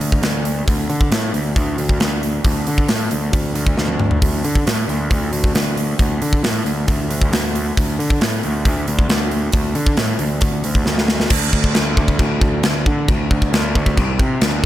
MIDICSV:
0, 0, Header, 1, 3, 480
1, 0, Start_track
1, 0, Tempo, 443131
1, 729, Time_signature, 4, 2, 24, 8
1, 15876, End_track
2, 0, Start_track
2, 0, Title_t, "Picked electric bass"
2, 0, Program_c, 0, 34
2, 1, Note_on_c, 0, 38, 81
2, 212, Note_off_c, 0, 38, 0
2, 243, Note_on_c, 0, 38, 93
2, 661, Note_off_c, 0, 38, 0
2, 731, Note_on_c, 0, 38, 74
2, 937, Note_off_c, 0, 38, 0
2, 970, Note_on_c, 0, 50, 86
2, 1177, Note_off_c, 0, 50, 0
2, 1207, Note_on_c, 0, 45, 95
2, 1415, Note_off_c, 0, 45, 0
2, 1452, Note_on_c, 0, 38, 84
2, 1658, Note_off_c, 0, 38, 0
2, 1688, Note_on_c, 0, 38, 94
2, 1896, Note_off_c, 0, 38, 0
2, 1925, Note_on_c, 0, 38, 72
2, 2134, Note_off_c, 0, 38, 0
2, 2167, Note_on_c, 0, 38, 94
2, 2583, Note_off_c, 0, 38, 0
2, 2656, Note_on_c, 0, 38, 81
2, 2860, Note_off_c, 0, 38, 0
2, 2898, Note_on_c, 0, 50, 79
2, 3101, Note_off_c, 0, 50, 0
2, 3127, Note_on_c, 0, 45, 85
2, 3335, Note_off_c, 0, 45, 0
2, 3376, Note_on_c, 0, 38, 77
2, 3580, Note_off_c, 0, 38, 0
2, 3609, Note_on_c, 0, 38, 81
2, 3816, Note_off_c, 0, 38, 0
2, 3845, Note_on_c, 0, 38, 74
2, 4054, Note_off_c, 0, 38, 0
2, 4093, Note_on_c, 0, 38, 86
2, 4506, Note_off_c, 0, 38, 0
2, 4576, Note_on_c, 0, 38, 77
2, 4780, Note_off_c, 0, 38, 0
2, 4815, Note_on_c, 0, 50, 82
2, 5020, Note_off_c, 0, 50, 0
2, 5055, Note_on_c, 0, 45, 80
2, 5260, Note_off_c, 0, 45, 0
2, 5284, Note_on_c, 0, 38, 81
2, 5494, Note_off_c, 0, 38, 0
2, 5534, Note_on_c, 0, 38, 79
2, 5740, Note_off_c, 0, 38, 0
2, 5770, Note_on_c, 0, 38, 66
2, 5977, Note_off_c, 0, 38, 0
2, 6011, Note_on_c, 0, 38, 89
2, 6427, Note_off_c, 0, 38, 0
2, 6497, Note_on_c, 0, 38, 82
2, 6702, Note_off_c, 0, 38, 0
2, 6736, Note_on_c, 0, 50, 75
2, 6942, Note_off_c, 0, 50, 0
2, 6967, Note_on_c, 0, 45, 80
2, 7177, Note_off_c, 0, 45, 0
2, 7209, Note_on_c, 0, 38, 78
2, 7418, Note_off_c, 0, 38, 0
2, 7455, Note_on_c, 0, 38, 85
2, 7661, Note_off_c, 0, 38, 0
2, 7691, Note_on_c, 0, 38, 76
2, 7899, Note_off_c, 0, 38, 0
2, 7925, Note_on_c, 0, 38, 87
2, 8344, Note_off_c, 0, 38, 0
2, 8423, Note_on_c, 0, 38, 78
2, 8626, Note_off_c, 0, 38, 0
2, 8655, Note_on_c, 0, 50, 82
2, 8862, Note_off_c, 0, 50, 0
2, 8898, Note_on_c, 0, 45, 91
2, 9104, Note_off_c, 0, 45, 0
2, 9146, Note_on_c, 0, 38, 84
2, 9348, Note_off_c, 0, 38, 0
2, 9380, Note_on_c, 0, 38, 83
2, 9585, Note_off_c, 0, 38, 0
2, 9619, Note_on_c, 0, 38, 82
2, 9824, Note_off_c, 0, 38, 0
2, 9851, Note_on_c, 0, 38, 85
2, 10268, Note_off_c, 0, 38, 0
2, 10327, Note_on_c, 0, 38, 75
2, 10538, Note_off_c, 0, 38, 0
2, 10564, Note_on_c, 0, 50, 80
2, 10776, Note_off_c, 0, 50, 0
2, 10809, Note_on_c, 0, 45, 87
2, 11020, Note_off_c, 0, 45, 0
2, 11043, Note_on_c, 0, 38, 82
2, 11256, Note_off_c, 0, 38, 0
2, 11285, Note_on_c, 0, 38, 93
2, 11497, Note_off_c, 0, 38, 0
2, 11532, Note_on_c, 0, 38, 70
2, 11741, Note_off_c, 0, 38, 0
2, 11766, Note_on_c, 0, 38, 86
2, 12185, Note_off_c, 0, 38, 0
2, 12247, Note_on_c, 0, 38, 80
2, 12472, Note_off_c, 0, 38, 0
2, 12489, Note_on_c, 0, 38, 86
2, 12713, Note_off_c, 0, 38, 0
2, 12735, Note_on_c, 0, 38, 92
2, 12956, Note_off_c, 0, 38, 0
2, 12971, Note_on_c, 0, 38, 92
2, 13194, Note_off_c, 0, 38, 0
2, 13210, Note_on_c, 0, 38, 91
2, 13434, Note_off_c, 0, 38, 0
2, 13446, Note_on_c, 0, 38, 75
2, 13671, Note_off_c, 0, 38, 0
2, 13705, Note_on_c, 0, 38, 92
2, 13921, Note_off_c, 0, 38, 0
2, 13939, Note_on_c, 0, 50, 91
2, 14158, Note_off_c, 0, 50, 0
2, 14175, Note_on_c, 0, 38, 81
2, 14395, Note_off_c, 0, 38, 0
2, 14415, Note_on_c, 0, 38, 86
2, 14636, Note_off_c, 0, 38, 0
2, 14653, Note_on_c, 0, 38, 93
2, 14874, Note_off_c, 0, 38, 0
2, 14902, Note_on_c, 0, 38, 99
2, 15119, Note_off_c, 0, 38, 0
2, 15141, Note_on_c, 0, 36, 92
2, 15358, Note_off_c, 0, 36, 0
2, 15377, Note_on_c, 0, 48, 85
2, 15596, Note_off_c, 0, 48, 0
2, 15620, Note_on_c, 0, 38, 94
2, 15837, Note_off_c, 0, 38, 0
2, 15876, End_track
3, 0, Start_track
3, 0, Title_t, "Drums"
3, 12, Note_on_c, 9, 46, 59
3, 121, Note_off_c, 9, 46, 0
3, 133, Note_on_c, 9, 36, 81
3, 242, Note_off_c, 9, 36, 0
3, 248, Note_on_c, 9, 46, 74
3, 255, Note_on_c, 9, 38, 96
3, 356, Note_off_c, 9, 46, 0
3, 363, Note_off_c, 9, 38, 0
3, 490, Note_on_c, 9, 46, 54
3, 598, Note_off_c, 9, 46, 0
3, 733, Note_on_c, 9, 36, 101
3, 735, Note_on_c, 9, 46, 72
3, 842, Note_off_c, 9, 36, 0
3, 843, Note_off_c, 9, 46, 0
3, 970, Note_on_c, 9, 46, 47
3, 1079, Note_off_c, 9, 46, 0
3, 1091, Note_on_c, 9, 36, 80
3, 1199, Note_off_c, 9, 36, 0
3, 1210, Note_on_c, 9, 46, 62
3, 1217, Note_on_c, 9, 38, 108
3, 1318, Note_off_c, 9, 46, 0
3, 1325, Note_off_c, 9, 38, 0
3, 1452, Note_on_c, 9, 46, 50
3, 1561, Note_off_c, 9, 46, 0
3, 1691, Note_on_c, 9, 36, 105
3, 1692, Note_on_c, 9, 46, 64
3, 1799, Note_off_c, 9, 36, 0
3, 1801, Note_off_c, 9, 46, 0
3, 1930, Note_on_c, 9, 46, 57
3, 2039, Note_off_c, 9, 46, 0
3, 2051, Note_on_c, 9, 36, 77
3, 2159, Note_off_c, 9, 36, 0
3, 2169, Note_on_c, 9, 46, 70
3, 2175, Note_on_c, 9, 38, 102
3, 2277, Note_off_c, 9, 46, 0
3, 2284, Note_off_c, 9, 38, 0
3, 2416, Note_on_c, 9, 46, 56
3, 2524, Note_off_c, 9, 46, 0
3, 2647, Note_on_c, 9, 46, 68
3, 2649, Note_on_c, 9, 36, 101
3, 2756, Note_off_c, 9, 46, 0
3, 2758, Note_off_c, 9, 36, 0
3, 2889, Note_on_c, 9, 46, 52
3, 2997, Note_off_c, 9, 46, 0
3, 3010, Note_on_c, 9, 36, 85
3, 3119, Note_off_c, 9, 36, 0
3, 3124, Note_on_c, 9, 46, 79
3, 3131, Note_on_c, 9, 38, 105
3, 3233, Note_off_c, 9, 46, 0
3, 3239, Note_off_c, 9, 38, 0
3, 3369, Note_on_c, 9, 46, 57
3, 3477, Note_off_c, 9, 46, 0
3, 3608, Note_on_c, 9, 46, 68
3, 3610, Note_on_c, 9, 36, 99
3, 3716, Note_off_c, 9, 46, 0
3, 3719, Note_off_c, 9, 36, 0
3, 3850, Note_on_c, 9, 46, 61
3, 3959, Note_off_c, 9, 46, 0
3, 3970, Note_on_c, 9, 36, 86
3, 4078, Note_off_c, 9, 36, 0
3, 4089, Note_on_c, 9, 38, 59
3, 4198, Note_off_c, 9, 38, 0
3, 4203, Note_on_c, 9, 48, 58
3, 4312, Note_off_c, 9, 48, 0
3, 4327, Note_on_c, 9, 45, 88
3, 4436, Note_off_c, 9, 45, 0
3, 4451, Note_on_c, 9, 43, 85
3, 4559, Note_off_c, 9, 43, 0
3, 4572, Note_on_c, 9, 36, 101
3, 4572, Note_on_c, 9, 46, 67
3, 4680, Note_off_c, 9, 36, 0
3, 4681, Note_off_c, 9, 46, 0
3, 4813, Note_on_c, 9, 46, 57
3, 4922, Note_off_c, 9, 46, 0
3, 4934, Note_on_c, 9, 36, 80
3, 5042, Note_off_c, 9, 36, 0
3, 5059, Note_on_c, 9, 46, 69
3, 5065, Note_on_c, 9, 38, 105
3, 5167, Note_off_c, 9, 46, 0
3, 5174, Note_off_c, 9, 38, 0
3, 5298, Note_on_c, 9, 46, 48
3, 5407, Note_off_c, 9, 46, 0
3, 5531, Note_on_c, 9, 46, 66
3, 5533, Note_on_c, 9, 36, 101
3, 5639, Note_off_c, 9, 46, 0
3, 5641, Note_off_c, 9, 36, 0
3, 5770, Note_on_c, 9, 46, 57
3, 5878, Note_off_c, 9, 46, 0
3, 5891, Note_on_c, 9, 36, 80
3, 6000, Note_off_c, 9, 36, 0
3, 6012, Note_on_c, 9, 46, 70
3, 6019, Note_on_c, 9, 38, 110
3, 6121, Note_off_c, 9, 46, 0
3, 6127, Note_off_c, 9, 38, 0
3, 6254, Note_on_c, 9, 46, 52
3, 6362, Note_off_c, 9, 46, 0
3, 6490, Note_on_c, 9, 46, 76
3, 6492, Note_on_c, 9, 36, 92
3, 6599, Note_off_c, 9, 46, 0
3, 6600, Note_off_c, 9, 36, 0
3, 6734, Note_on_c, 9, 46, 55
3, 6843, Note_off_c, 9, 46, 0
3, 6854, Note_on_c, 9, 36, 83
3, 6962, Note_off_c, 9, 36, 0
3, 6977, Note_on_c, 9, 46, 75
3, 6983, Note_on_c, 9, 38, 98
3, 7085, Note_off_c, 9, 46, 0
3, 7091, Note_off_c, 9, 38, 0
3, 7215, Note_on_c, 9, 46, 52
3, 7324, Note_off_c, 9, 46, 0
3, 7451, Note_on_c, 9, 46, 69
3, 7454, Note_on_c, 9, 36, 100
3, 7559, Note_off_c, 9, 46, 0
3, 7563, Note_off_c, 9, 36, 0
3, 7696, Note_on_c, 9, 46, 64
3, 7805, Note_off_c, 9, 46, 0
3, 7816, Note_on_c, 9, 36, 84
3, 7924, Note_off_c, 9, 36, 0
3, 7938, Note_on_c, 9, 46, 79
3, 7945, Note_on_c, 9, 38, 108
3, 8047, Note_off_c, 9, 46, 0
3, 8053, Note_off_c, 9, 38, 0
3, 8184, Note_on_c, 9, 46, 57
3, 8292, Note_off_c, 9, 46, 0
3, 8421, Note_on_c, 9, 36, 100
3, 8430, Note_on_c, 9, 46, 70
3, 8529, Note_off_c, 9, 36, 0
3, 8538, Note_off_c, 9, 46, 0
3, 8668, Note_on_c, 9, 46, 54
3, 8776, Note_off_c, 9, 46, 0
3, 8778, Note_on_c, 9, 36, 89
3, 8886, Note_off_c, 9, 36, 0
3, 8896, Note_on_c, 9, 46, 75
3, 8903, Note_on_c, 9, 38, 113
3, 9005, Note_off_c, 9, 46, 0
3, 9011, Note_off_c, 9, 38, 0
3, 9135, Note_on_c, 9, 46, 50
3, 9243, Note_off_c, 9, 46, 0
3, 9373, Note_on_c, 9, 46, 66
3, 9374, Note_on_c, 9, 36, 99
3, 9482, Note_off_c, 9, 36, 0
3, 9482, Note_off_c, 9, 46, 0
3, 9614, Note_on_c, 9, 46, 55
3, 9723, Note_off_c, 9, 46, 0
3, 9734, Note_on_c, 9, 36, 83
3, 9842, Note_off_c, 9, 36, 0
3, 9851, Note_on_c, 9, 46, 69
3, 9858, Note_on_c, 9, 38, 100
3, 9960, Note_off_c, 9, 46, 0
3, 9966, Note_off_c, 9, 38, 0
3, 10089, Note_on_c, 9, 46, 49
3, 10197, Note_off_c, 9, 46, 0
3, 10317, Note_on_c, 9, 46, 68
3, 10328, Note_on_c, 9, 36, 107
3, 10425, Note_off_c, 9, 46, 0
3, 10436, Note_off_c, 9, 36, 0
3, 10563, Note_on_c, 9, 46, 51
3, 10671, Note_off_c, 9, 46, 0
3, 10686, Note_on_c, 9, 36, 82
3, 10794, Note_off_c, 9, 36, 0
3, 10799, Note_on_c, 9, 46, 73
3, 10805, Note_on_c, 9, 38, 103
3, 10907, Note_off_c, 9, 46, 0
3, 10913, Note_off_c, 9, 38, 0
3, 11037, Note_on_c, 9, 46, 57
3, 11145, Note_off_c, 9, 46, 0
3, 11273, Note_on_c, 9, 46, 72
3, 11284, Note_on_c, 9, 36, 109
3, 11382, Note_off_c, 9, 46, 0
3, 11392, Note_off_c, 9, 36, 0
3, 11522, Note_on_c, 9, 46, 61
3, 11631, Note_off_c, 9, 46, 0
3, 11645, Note_on_c, 9, 36, 73
3, 11753, Note_off_c, 9, 36, 0
3, 11762, Note_on_c, 9, 38, 60
3, 11870, Note_off_c, 9, 38, 0
3, 11892, Note_on_c, 9, 38, 60
3, 12000, Note_off_c, 9, 38, 0
3, 12006, Note_on_c, 9, 38, 86
3, 12114, Note_off_c, 9, 38, 0
3, 12131, Note_on_c, 9, 38, 81
3, 12239, Note_off_c, 9, 38, 0
3, 12240, Note_on_c, 9, 49, 116
3, 12240, Note_on_c, 9, 52, 58
3, 12246, Note_on_c, 9, 36, 113
3, 12349, Note_off_c, 9, 49, 0
3, 12349, Note_off_c, 9, 52, 0
3, 12355, Note_off_c, 9, 36, 0
3, 12489, Note_on_c, 9, 36, 93
3, 12598, Note_off_c, 9, 36, 0
3, 12607, Note_on_c, 9, 36, 84
3, 12715, Note_off_c, 9, 36, 0
3, 12722, Note_on_c, 9, 52, 57
3, 12728, Note_on_c, 9, 38, 100
3, 12830, Note_off_c, 9, 52, 0
3, 12836, Note_off_c, 9, 38, 0
3, 12968, Note_on_c, 9, 36, 85
3, 13076, Note_off_c, 9, 36, 0
3, 13087, Note_on_c, 9, 36, 84
3, 13195, Note_off_c, 9, 36, 0
3, 13206, Note_on_c, 9, 52, 57
3, 13207, Note_on_c, 9, 36, 95
3, 13314, Note_off_c, 9, 52, 0
3, 13315, Note_off_c, 9, 36, 0
3, 13448, Note_on_c, 9, 36, 96
3, 13556, Note_off_c, 9, 36, 0
3, 13682, Note_on_c, 9, 52, 64
3, 13689, Note_on_c, 9, 38, 111
3, 13790, Note_off_c, 9, 52, 0
3, 13797, Note_off_c, 9, 38, 0
3, 13932, Note_on_c, 9, 36, 85
3, 14040, Note_off_c, 9, 36, 0
3, 14172, Note_on_c, 9, 52, 57
3, 14173, Note_on_c, 9, 36, 104
3, 14280, Note_off_c, 9, 52, 0
3, 14282, Note_off_c, 9, 36, 0
3, 14416, Note_on_c, 9, 36, 87
3, 14524, Note_off_c, 9, 36, 0
3, 14536, Note_on_c, 9, 36, 91
3, 14644, Note_off_c, 9, 36, 0
3, 14660, Note_on_c, 9, 52, 65
3, 14666, Note_on_c, 9, 38, 114
3, 14768, Note_off_c, 9, 52, 0
3, 14775, Note_off_c, 9, 38, 0
3, 14898, Note_on_c, 9, 36, 78
3, 15007, Note_off_c, 9, 36, 0
3, 15016, Note_on_c, 9, 36, 79
3, 15125, Note_off_c, 9, 36, 0
3, 15136, Note_on_c, 9, 52, 64
3, 15137, Note_on_c, 9, 36, 97
3, 15244, Note_off_c, 9, 52, 0
3, 15246, Note_off_c, 9, 36, 0
3, 15376, Note_on_c, 9, 36, 102
3, 15484, Note_off_c, 9, 36, 0
3, 15611, Note_on_c, 9, 52, 69
3, 15618, Note_on_c, 9, 38, 123
3, 15720, Note_off_c, 9, 52, 0
3, 15726, Note_off_c, 9, 38, 0
3, 15876, End_track
0, 0, End_of_file